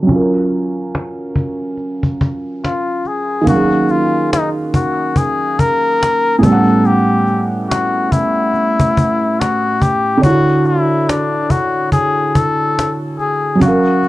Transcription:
0.02 3.40 F#3 medium
0.07 3.42 C#4 medium
0.07 cajon bass loud
0.11 3.44 F4 medium
0.16 3.46 A#4 medium
0.51 cajon slap soft
0.95 cajon slap loud
1.36 cajon bass medium
1.77 cajon slap soft
2.03 cajon bass medium
2.21 cajon bass medium
2.65 3.09 F4 medium
2.65 cajon slap loud
3.05 3.48 G#4 medium
3.05 cajon slap soft
3.41 6.36 D#3 medium
3.41 6.37 A#3 medium
3.47 6.39 C#4 medium
3.47 3.92 F#4 loud
3.47 6.40 F5 medium
3.47 cajon bass loud
3.52 6.41 F#3 medium
3.52 6.43 G#4 medium
3.88 4.32 F4 loud
3.88 cajon slap soft
4.33 4.49 D#4 medium
4.33 cajon slap loud
4.74 5.19 F#4 loud
4.74 cajon bass medium
5.16 5.61 G#4 loud
5.16 cajon bass loud
5.59 6.38 A#4 loud
5.59 cajon bass medium
6.03 cajon slap loud
6.38 9.75 A2 medium
6.38 9.76 G3 medium
6.38 6.45 G#4 medium
6.43 9.78 B3 medium
6.43 6.88 A4 loud
6.43 cajon bass loud
6.48 9.80 C#4 medium
6.48 9.81 F#5 medium
6.85 7.46 G4 loud
6.85 cajon slap soft
7.27 cajon slap soft
7.70 8.13 F#4 loud
7.70 cajon slap loud
8.12 9.41 E4 loud
8.12 cajon bass medium
8.54 cajon slap soft
8.80 cajon bass loud
8.97 cajon bass loud
9.40 9.83 F#4 loud
9.40 cajon slap loud
9.82 10.23 G4 loud
9.82 cajon bass medium
10.17 13.54 D3 medium
10.22 10.68 F#4 loud
10.22 13.57 C#5 medium
10.22 cajon bass loud
10.26 13.59 E4 medium
10.30 13.61 F#4 medium
10.65 11.11 E4 medium
10.65 cajon slap soft
11.09 11.52 D4 medium
11.09 cajon slap loud
11.50 11.92 F#4 medium
11.50 cajon bass medium
11.92 12.37 G#4 loud
11.92 cajon bass medium
12.35 12.96 A4 loud
12.35 cajon bass loud
12.79 cajon slap loud
13.19 13.59 G#4 loud
13.19 cajon slap soft
13.55 14.08 F#3 medium
13.60 14.08 C#4 medium
13.60 14.08 F#4 loud
13.60 cajon bass loud
13.64 14.08 F5 medium
13.68 14.08 A#4 medium
14.03 cajon slap soft

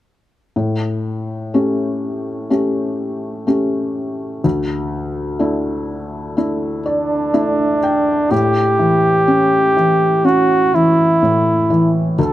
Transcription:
0.56 4.40 A2 soft
1.54 2.48 A3 soft
1.54 2.48 C#4 soft
1.54 2.48 G4 soft
2.50 3.44 A3 soft
2.50 3.44 C#4 soft
2.50 3.45 G4 soft
3.47 4.41 A3 soft
3.47 4.41 C#4 soft
3.47 4.41 G4 soft
4.44 8.27 D2 soft
5.39 6.34 A3 soft
5.39 6.34 D4 soft
5.39 6.34 E4 soft
6.37 7.31 A3 soft
6.37 7.31 D4 soft
6.37 7.32 E4 soft
6.86 8.33 D4 medium
6.86 7.31 D5 soft
7.34 8.28 A3 soft
7.34 8.28 D4 soft
7.34 8.28 E4 soft
7.34 7.79 E5 soft
7.83 8.28 G5 soft
8.31 11.21 A2 soft
8.31 10.27 G4 medium
8.79 9.75 E3 soft
9.28 10.23 C#4 soft
9.77 10.72 E3 soft
10.24 12.14 C#4 soft
10.24 10.76 F#4 medium
10.74 11.69 E3 soft
10.74 11.92 E4 medium
11.22 12.16 A2 soft
11.70 12.17 E3 soft
12.19 12.33 D2 soft
12.19 12.33 A4 medium

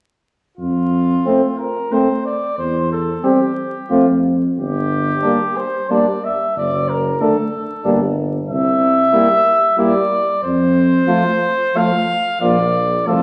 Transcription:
0.57 1.15 F2 soft
0.57 1.55 F4 medium
1.25 1.42 A3 soft
1.25 1.41 C4 soft
1.58 1.94 A#4 soft
1.92 2.08 A3 soft
1.92 2.08 C4 soft
1.92 2.09 C4 soft
1.92 2.25 C5 soft
2.25 2.58 D5 medium
2.58 3.13 E2 soft
2.58 2.91 C5 medium
2.92 3.26 A4 soft
3.23 3.39 G3 soft
3.23 3.40 C4 soft
3.23 4.24 G4 soft
3.90 4.46 F2 soft
3.90 4.06 A3 soft
3.90 4.06 C4 soft
3.90 4.06 F4 soft
4.57 5.12 G1 medium
4.57 5.58 G4 medium
5.22 5.39 G3 soft
5.22 5.39 A#3 soft
5.22 5.38 D4 soft
5.57 5.92 C5 medium
5.90 6.06 G3 soft
5.90 6.06 A#3 soft
5.90 6.07 D4 soft
5.90 6.26 D5 medium
6.25 6.56 E5 medium
6.56 7.10 F#1 medium
6.56 6.91 D5 medium
6.89 7.23 A#4 medium
7.21 7.37 D3 soft
7.21 7.37 A3 soft
7.21 7.37 D4 soft
7.21 8.17 A4 medium
7.84 8.38 G1 medium
7.84 8.01 G3 soft
7.84 8.01 A#3 soft
7.84 8.00 D4 soft
8.48 9.02 C2 medium
8.48 9.74 E5 medium
9.12 9.29 G3 soft
9.12 9.29 A#3 soft
9.12 9.28 E4 soft
9.77 9.94 G3 medium
9.77 9.94 A#3 medium
9.77 9.93 E4 soft
9.77 10.42 D5 medium
10.43 10.97 F2 medium
10.43 11.78 C5 medium
11.07 11.24 F3 soft
11.07 11.24 A3 soft
11.07 11.23 F4 soft
11.75 11.92 F3 soft
11.75 11.92 A3 soft
11.75 11.91 F4 medium
11.75 12.40 F5 medium
12.41 12.96 A#1 medium
12.41 12.57 F3 soft
12.41 12.57 A#3 soft
12.41 12.58 F4 soft
12.41 13.08 D5 medium
13.06 13.23 C2 soft
13.06 13.23 F3 soft
13.06 13.22 A3 soft
13.06 13.23 F4 soft
13.06 13.23 A4 medium

